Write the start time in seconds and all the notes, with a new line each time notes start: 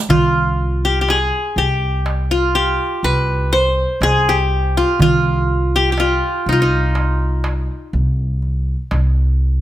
0.09 C2 F4, darbuka dum
0.85 G4
1.01 G4
1.09 G#4, darbuka tek
1.56 C2 G4
2.06 darbuka tek
2.31 F4
2.55 G4
3.03 C2 B4
3.53 C5
4.01 C2 G#4, darbuka tek
4.29 G4
4.77 F4
4.99 C2 F4, darbuka dum
5.76 G4
5.92 G4
5.98 F4, darbuka tek
6.46 C2 D#4
6.53 F4
6.62 D#4
6.95 darbuka tek
7.44 darbuka tek
7.93 C2, darbuka ka
8.42 darbuka ka
8.91 C2, darbuka tek